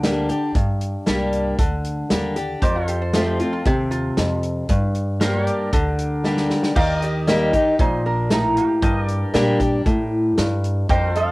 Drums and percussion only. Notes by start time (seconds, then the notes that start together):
0.03 snare, closed hi-hat
0.29 closed hi-hat
0.55 kick, closed hi-hat
0.81 closed hi-hat
1.07 snare, closed hi-hat
1.33 closed hi-hat
1.59 kick, closed hi-hat
1.84 closed hi-hat
2.10 snare, closed hi-hat
2.36 closed hi-hat
2.62 kick, closed hi-hat
2.88 closed hi-hat
3.13 snare, closed hi-hat
3.39 closed hi-hat
3.65 kick, closed hi-hat
3.91 closed hi-hat
4.17 snare, closed hi-hat
4.43 closed hi-hat
4.69 kick, closed hi-hat
4.95 closed hi-hat
5.21 snare, closed hi-hat
5.47 closed hi-hat
5.73 kick, closed hi-hat
5.99 closed hi-hat
6.24 snare
6.37 snare
6.50 snare
6.63 snare
6.76 kick, crash
7.02 closed hi-hat
7.28 snare, closed hi-hat
7.54 kick, closed hi-hat
7.79 kick, closed hi-hat
8.31 snare, closed hi-hat
8.57 closed hi-hat
8.83 kick, closed hi-hat
9.08 closed hi-hat
9.34 snare, closed hi-hat
9.60 kick, closed hi-hat
9.86 kick, closed hi-hat
10.37 snare, closed hi-hat
10.64 closed hi-hat
10.89 kick, closed hi-hat
11.15 closed hi-hat